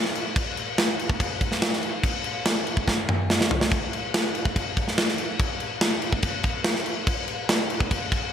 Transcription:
0.05 snare soft
0.15 crash medium
0.36 kick loud
0.36 crash medium
0.57 crash medium
0.78 snare loud
0.78 crash medium
0.99 crash medium
1.10 kick medium
1.20 kick medium
1.20 crash medium
1.41 kick medium
1.41 crash medium
1.52 snare soft
1.62 snare loud
1.62 crash medium
1.73 snare soft
1.83 crash medium
2.04 kick loud
2.04 crash medium
2.24 crash medium
2.45 snare loud
2.45 crash medium
2.67 crash medium
2.77 kick medium
2.88 kick medium
2.88 snare medium
3.09 mid tom medium
3.30 snare medium
3.41 snare medium
3.51 floor tom loud
3.61 snare medium
3.71 kick loud
3.71 crash medium
3.93 crash medium
4.14 snare loud
4.14 crash medium
4.35 crash medium
4.45 kick medium
4.56 kick medium
4.56 crash medium
4.77 kick medium
4.77 crash medium
4.88 snare soft
4.98 snare loud
4.98 crash medium
5.08 snare soft
5.18 crash medium
5.39 kick loud
5.39 crash medium
5.60 crash medium
5.81 snare loud
5.81 crash medium
6.02 crash medium
6.13 kick medium
6.22 kick medium
6.22 crash medium
6.43 kick medium
6.43 crash medium
6.64 snare loud
6.64 crash medium
6.76 snare soft
6.86 crash medium
7.07 kick loud
7.07 crash medium
7.28 crash medium
7.49 snare loud
7.49 crash medium
7.70 crash medium
7.80 kick medium
7.91 kick medium
7.91 crash medium
8.12 kick medium
8.12 crash medium

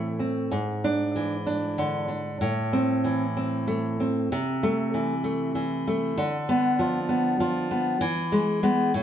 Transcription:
0.00 0.48 A2 soft
0.00 0.20 E3 soft
0.00 0.52 A3 soft
0.00 0.18 C4 soft
0.19 0.52 C4 soft
0.51 2.37 G#2 soft
0.84 1.34 D4 soft
1.16 2.09 E3 soft
1.47 2.07 D4 soft
1.78 2.41 D3 soft
2.08 2.41 D4 soft
2.41 4.28 A2 medium
2.73 3.24 C4 medium
3.04 4.00 E3 soft
3.37 3.99 C4 soft
3.67 4.31 A3 soft
4.00 4.32 C4 soft
4.32 6.15 C3 medium
4.63 5.12 A3 medium
4.94 5.54 E3 soft
5.24 5.86 A3 soft
5.55 6.19 E3 soft
5.87 6.19 A3 soft
6.17 7.99 D3 medium
6.49 6.98 B3 medium
6.79 7.39 F3 soft
7.09 7.70 B3 soft
7.40 8.00 F3 medium
7.71 8.03 B3 soft
8.01 8.91 E3 medium
8.32 8.62 G#3 soft
8.63 8.91 G#3 soft
8.63 8.91 B3 medium
8.94 9.03 A2 medium

